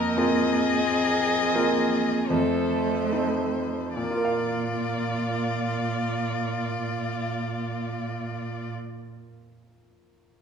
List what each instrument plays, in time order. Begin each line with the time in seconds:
Already playing: grand piano F2, cello A#3, violin A#4 D#5
0.17 grand piano C4 F4 A#4, violin G#4
0.84 cello C4
1.54 cello A#3, grand piano C4 F4 A#4
2.28 grand piano F2, cello A3, violin A4 C5
3.12 grand piano C4 D#4 A4
3.96 grand piano A#2, cello A#2, violin F4 D5
4.03 grand piano A#3
4.11 grand piano F4
4.17 grand piano A#4
4.25 grand piano F5